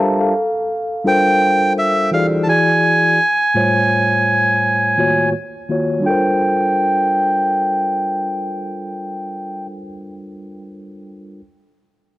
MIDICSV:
0, 0, Header, 1, 3, 480
1, 0, Start_track
1, 0, Tempo, 714286
1, 216, Time_signature, 4, 2, 24, 8
1, 8186, End_track
2, 0, Start_track
2, 0, Title_t, "Melodica"
2, 0, Program_c, 0, 22
2, 722, Note_on_c, 0, 79, 85
2, 1162, Note_off_c, 0, 79, 0
2, 1199, Note_on_c, 0, 76, 81
2, 1412, Note_off_c, 0, 76, 0
2, 1434, Note_on_c, 0, 77, 76
2, 1521, Note_off_c, 0, 77, 0
2, 1634, Note_on_c, 0, 81, 64
2, 1663, Note_off_c, 0, 81, 0
2, 1671, Note_on_c, 0, 80, 91
2, 3557, Note_off_c, 0, 80, 0
2, 4072, Note_on_c, 0, 79, 79
2, 6495, Note_off_c, 0, 79, 0
2, 8186, End_track
3, 0, Start_track
3, 0, Title_t, "Tine electric piano"
3, 0, Program_c, 1, 4
3, 0, Control_c, 1, 64, 127
3, 0, Note_on_c, 1, 55, 88
3, 0, Note_on_c, 1, 62, 78
3, 0, Note_on_c, 1, 65, 77
3, 0, Note_on_c, 1, 67, 50
3, 0, Note_on_c, 1, 69, 50
3, 0, Note_on_c, 1, 70, 92
3, 0, Note_on_c, 1, 72, 52
3, 0, Note_on_c, 1, 76, 67
3, 0, Note_on_c, 1, 77, 62
3, 0, Note_on_c, 1, 81, 66
3, 0, Note_on_c, 1, 82, 68
3, 124, Note_off_c, 1, 81, 0
3, 126, Note_off_c, 1, 72, 0
3, 137, Note_off_c, 1, 77, 0
3, 137, Note_on_c, 1, 77, 57
3, 140, Note_off_c, 1, 69, 0
3, 140, Note_on_c, 1, 69, 52
3, 224, Control_c, 1, 64, 0
3, 225, Note_off_c, 1, 62, 0
3, 226, Note_off_c, 1, 70, 0
3, 226, Note_off_c, 1, 76, 0
3, 226, Note_off_c, 1, 82, 0
3, 227, Note_off_c, 1, 67, 0
3, 228, Note_off_c, 1, 65, 0
3, 229, Note_off_c, 1, 55, 0
3, 349, Control_c, 1, 64, 127
3, 358, Note_off_c, 1, 77, 0
3, 360, Note_off_c, 1, 69, 0
3, 701, Note_on_c, 1, 55, 64
3, 705, Note_on_c, 1, 62, 58
3, 710, Note_on_c, 1, 65, 54
3, 714, Note_on_c, 1, 69, 56
3, 718, Note_on_c, 1, 70, 55
3, 722, Note_on_c, 1, 72, 67
3, 1381, Note_off_c, 1, 55, 0
3, 1383, Note_off_c, 1, 62, 0
3, 1386, Note_off_c, 1, 65, 0
3, 1388, Note_off_c, 1, 69, 0
3, 1390, Note_off_c, 1, 70, 0
3, 1392, Note_off_c, 1, 72, 0
3, 1420, Note_on_c, 1, 52, 59
3, 1425, Note_on_c, 1, 64, 54
3, 1431, Note_on_c, 1, 66, 55
3, 1436, Note_on_c, 1, 68, 55
3, 1441, Note_on_c, 1, 74, 62
3, 1650, Note_off_c, 1, 52, 0
3, 1656, Note_off_c, 1, 64, 0
3, 1658, Note_on_c, 1, 52, 57
3, 1661, Note_off_c, 1, 66, 0
3, 1663, Control_c, 1, 64, 0
3, 1664, Note_on_c, 1, 64, 51
3, 1666, Note_off_c, 1, 68, 0
3, 1669, Note_on_c, 1, 66, 51
3, 1672, Note_off_c, 1, 74, 0
3, 1674, Note_on_c, 1, 68, 54
3, 1680, Note_on_c, 1, 74, 61
3, 1785, Control_c, 1, 64, 127
3, 1956, Note_off_c, 1, 52, 0
3, 1959, Note_off_c, 1, 64, 0
3, 1961, Note_off_c, 1, 66, 0
3, 1964, Note_off_c, 1, 68, 0
3, 1967, Note_off_c, 1, 74, 0
3, 2144, Control_c, 1, 64, 0
3, 2262, Control_c, 1, 64, 127
3, 2381, Note_on_c, 1, 45, 70
3, 2384, Note_on_c, 1, 57, 59
3, 2389, Note_on_c, 1, 65, 58
3, 2393, Note_on_c, 1, 55, 60
3, 2397, Note_on_c, 1, 72, 59
3, 2401, Note_on_c, 1, 73, 69
3, 3061, Note_off_c, 1, 45, 0
3, 3063, Note_off_c, 1, 57, 0
3, 3065, Note_off_c, 1, 65, 0
3, 3067, Note_off_c, 1, 55, 0
3, 3069, Note_off_c, 1, 72, 0
3, 3071, Note_off_c, 1, 73, 0
3, 3340, Note_on_c, 1, 51, 64
3, 3345, Note_on_c, 1, 58, 59
3, 3352, Note_on_c, 1, 65, 62
3, 3356, Note_on_c, 1, 66, 61
3, 3362, Note_on_c, 1, 73, 73
3, 3522, Note_off_c, 1, 51, 0
3, 3524, Note_off_c, 1, 58, 0
3, 3528, Note_off_c, 1, 65, 0
3, 3530, Note_off_c, 1, 66, 0
3, 3533, Note_off_c, 1, 73, 0
3, 3584, Control_c, 1, 64, 0
3, 3689, Control_c, 1, 64, 127
3, 3822, Note_on_c, 1, 51, 58
3, 3825, Note_on_c, 1, 58, 58
3, 3831, Note_on_c, 1, 65, 56
3, 3836, Note_on_c, 1, 66, 53
3, 3841, Note_on_c, 1, 73, 67
3, 4029, Note_on_c, 1, 55, 64
3, 4044, Note_on_c, 1, 62, 60
3, 4053, Note_off_c, 1, 65, 0
3, 4059, Note_off_c, 1, 51, 0
3, 4060, Note_off_c, 1, 58, 0
3, 4061, Note_on_c, 1, 65, 59
3, 4066, Note_off_c, 1, 66, 0
3, 4066, Control_c, 1, 64, 0
3, 4069, Note_off_c, 1, 73, 0
3, 4077, Note_on_c, 1, 69, 59
3, 4095, Note_on_c, 1, 70, 61
3, 4109, Note_on_c, 1, 72, 66
3, 4174, Control_c, 1, 64, 127
3, 6556, Note_off_c, 1, 55, 0
3, 6571, Note_off_c, 1, 62, 0
3, 6588, Note_off_c, 1, 65, 0
3, 6605, Note_off_c, 1, 69, 0
3, 6622, Note_off_c, 1, 70, 0
3, 6636, Note_off_c, 1, 72, 0
3, 7665, Control_c, 1, 64, 0
3, 8186, End_track
0, 0, End_of_file